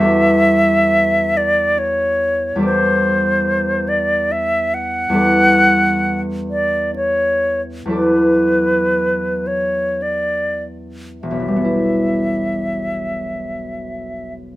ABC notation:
X:1
M:3/4
L:1/8
Q:1/4=66
K:Edor
V:1 name="Flute"
e3 d c2 | =c3 d e f- | f3 d c z | B3 c d z |
e6 |]
V:2 name="Harp"
[E,,G,EFGAde]6 | [E,,G,EAd]6 | [E,,G,EAd]6 | [E,,F,EAd]6- |
[E,,F,EAd]6 |]
V:3 name="Harp" clef=bass
z6 | z6 | z6 | z6 |
[E,,,B,,,E,G,B,E]6 |]